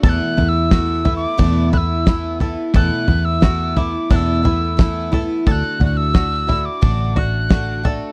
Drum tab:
SD |--o---o-|--o---o-|--o---o-|
FT |oooooooo|oooooooo|oooooooo|
BD |o-o-o-o-|o-o-o-o-|o-o-o-o-|